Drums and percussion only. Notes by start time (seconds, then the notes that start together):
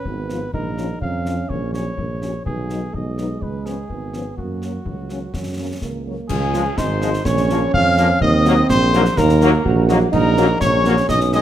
0.05 concert bass drum
0.30 snare
0.54 concert bass drum
0.78 snare
1.02 concert bass drum
1.26 snare
1.50 concert bass drum
1.74 snare
1.98 concert bass drum
2.22 snare
2.46 concert bass drum
2.70 snare
2.94 concert bass drum
3.18 snare
3.42 concert bass drum
3.66 snare
3.90 concert bass drum
4.13 snare
4.38 concert bass drum
4.62 snare
4.86 concert bass drum
5.10 snare
5.34 concert bass drum, snare
5.82 concert bass drum, snare
6.29 concert bass drum, crash
6.54 snare
6.78 concert bass drum, snare
7.02 snare
7.14 snare
7.25 concert bass drum, snare
7.37 snare
7.50 snare
7.74 concert bass drum
7.97 snare
8.21 concert bass drum
8.45 snare
8.69 concert bass drum, snare
8.93 snare
9.05 snare
9.17 concert bass drum, snare
9.29 snare
9.41 snare
9.65 concert bass drum
9.89 snare
10.13 concert bass drum, crash
10.37 snare
10.61 concert bass drum, snare
10.85 snare
10.97 snare
11.09 concert bass drum, snare
11.21 snare
11.33 snare